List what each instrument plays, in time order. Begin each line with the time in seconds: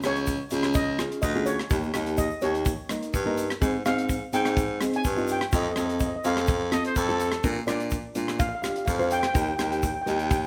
0.02 baritone saxophone C#2, nylon-string guitar C#4 F4 G#4, steel pan C#5, cross-stick, closed hi-hat, shaker
0.16 closed hi-hat
0.26 kick, closed hi-hat, shaker
0.50 baritone saxophone C#2, nylon-string guitar C#4 F4 G#4, closed hi-hat, shaker
0.63 cross-stick, closed hi-hat, shaker
0.74 steel pan D#5, kick, closed hi-hat, shaker
0.98 nylon-string guitar C#4 F4 G#4, cross-stick, closed hi-hat, shaker
1.12 closed hi-hat
1.22 baritone saxophone D2, steel pan D#5, kick, closed hi-hat, shaker
1.35 nylon-string guitar C#4 F4 G#4, shaker
1.46 steel pan C#5, closed hi-hat, shaker
1.59 cross-stick, closed hi-hat
1.70 baritone saxophone D#2, nylon-string guitar A#3 D#4 G4, kick, closed hi-hat, shaker
1.83 shaker
1.94 baritone saxophone D#2, nylon-string guitar A#3 D#4 G4, cross-stick, closed hi-hat, shaker
2.06 closed hi-hat
2.17 steel pan D#5, kick, closed hi-hat, shaker
2.30 shaker
2.41 baritone saxophone D#2, nylon-string guitar A#3 D#4 G4, steel pan C#5, closed hi-hat, shaker
2.55 closed hi-hat
2.65 kick, closed hi-hat, shaker
2.89 nylon-string guitar A#3 D#4 A#4, cross-stick, closed hi-hat, shaker
3.03 closed hi-hat, shaker
3.14 baritone saxophone G2, kick, closed hi-hat, shaker
3.25 nylon-string guitar A#3 D#4 A#4
3.37 closed hi-hat, shaker
3.50 cross-stick, closed hi-hat, shaker
3.61 baritone saxophone G#2, nylon-string guitar C4 D#4 G#4, kick, closed hi-hat, shaker
3.86 baritone saxophone G#2, nylon-string guitar C4 D#4 G#4, steel pan F5, cross-stick, closed hi-hat, shaker
3.98 closed hi-hat
4.09 kick, closed hi-hat, shaker
4.33 baritone saxophone G#2, nylon-string guitar C4 D#4 G#4, steel pan G5, closed hi-hat, shaker
4.45 cross-stick, closed hi-hat, shaker
4.56 kick, closed hi-hat, shaker
4.81 nylon-string guitar C4 D#4 G#4, cross-stick, closed hi-hat, shaker
4.93 steel pan G#5, closed hi-hat
5.04 baritone saxophone G2, kick, closed hi-hat, shaker
5.16 nylon-string guitar C4 D#4 F4, shaker
5.28 closed hi-hat, shaker
5.32 steel pan G5
5.41 cross-stick, closed hi-hat
5.52 baritone saxophone F2, nylon-string guitar C4 F4 A4, steel pan D#5, kick, closed hi-hat, shaker
5.63 steel pan D#5
5.71 steel pan D#5
5.76 baritone saxophone F2, nylon-string guitar C4 F4 A4, steel pan D#5, cross-stick, closed hi-hat, shaker
5.86 steel pan D#5, closed hi-hat
5.93 steel pan D#5
6.00 steel pan D#5, kick, closed hi-hat, shaker
6.07 steel pan D#5
6.16 steel pan D#5
6.24 baritone saxophone F2, nylon-string guitar C4 F4 A4, steel pan F5, closed hi-hat, shaker
6.37 cross-stick, closed hi-hat, shaker
6.47 kick, closed hi-hat, shaker
6.71 nylon-string guitar C4 F4 A4, trumpet D#5, cross-stick, closed hi-hat, shaker
6.85 trumpet C5, closed hi-hat
6.96 baritone saxophone F2, trumpet A4, kick, closed hi-hat, shaker
7.08 nylon-string guitar C4 F4 A4, shaker
7.20 closed hi-hat, shaker
7.32 cross-stick, closed hi-hat
7.43 baritone saxophone A#2, nylon-string guitar D4 F4 A#4, kick, closed hi-hat, shaker
7.66 baritone saxophone A#2, nylon-string guitar D4 F4 A#4, steel pan D5, cross-stick, closed hi-hat, shaker
7.80 closed hi-hat
7.90 kick, closed hi-hat, shaker
8.15 baritone saxophone A#2, nylon-string guitar D4 F4 A#4, closed hi-hat, shaker
8.28 cross-stick, closed hi-hat, shaker
8.39 steel pan F5, kick, closed hi-hat, shaker
8.49 steel pan F5
8.55 steel pan F5
8.62 nylon-string guitar D4 F4 G4, steel pan F5, cross-stick, closed hi-hat, shaker
8.70 steel pan F5
8.76 steel pan F5, closed hi-hat
8.86 baritone saxophone F2, steel pan F5, kick, closed hi-hat, shaker
8.94 steel pan F5
8.98 nylon-string guitar D4 F4 C5, steel pan F5, shaker
9.11 steel pan G5, closed hi-hat, shaker
9.19 steel pan G5, cross-stick, closed hi-hat
9.27 steel pan G5
9.34 baritone saxophone D#2, nylon-string guitar D#4 G4 A#4, steel pan G5, kick, closed hi-hat, shaker
9.42 steel pan G5
9.48 steel pan G5
9.56 baritone saxophone D#2, nylon-string guitar D#4 G4 A#4, steel pan G5, cross-stick, closed hi-hat, shaker
9.64 steel pan G5
9.72 steel pan G5, closed hi-hat
9.79 steel pan G5, kick, closed hi-hat, shaker
9.86 steel pan G5
9.94 steel pan G5
10.02 steel pan G5
10.06 baritone saxophone D#2, nylon-string guitar D#4 G4 A#4, steel pan G5, closed hi-hat, shaker
10.16 steel pan G5, closed hi-hat
10.24 steel pan G5
10.30 steel pan G5, kick, closed hi-hat, shaker
10.38 steel pan G5
10.44 shaker